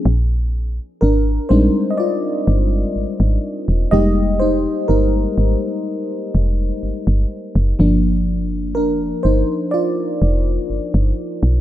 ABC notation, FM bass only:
X:1
M:4/4
L:1/16
Q:1/4=62
K:Bbmix
V:1 name="FM bass" clef=bass
B,,,4 A,,,2 B,,, z3 G,,,2 A,,, A,,, z =E,,, | F,,,4 G,,,2 A,,, z3 F,,,2 G,,, G,,, z _G,,, | G,,,4 F,,,2 G,,, z3 F,,,2 G,,, G,,, z =B,,, |]